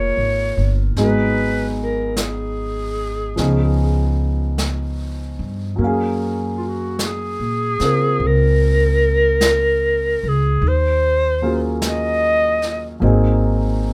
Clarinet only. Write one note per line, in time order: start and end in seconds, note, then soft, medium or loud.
0.00 0.82 C#5 medium
1.03 1.77 B4 medium
1.83 2.23 A#4 medium
2.22 4.21 G#4 medium
6.57 6.68 F4 soft
6.67 7.07 F#4 medium
7.06 8.29 G#4 medium
8.27 10.30 A#4 medium
10.28 10.69 G#4 medium
10.68 11.67 C5 medium
11.88 13.01 D#5 medium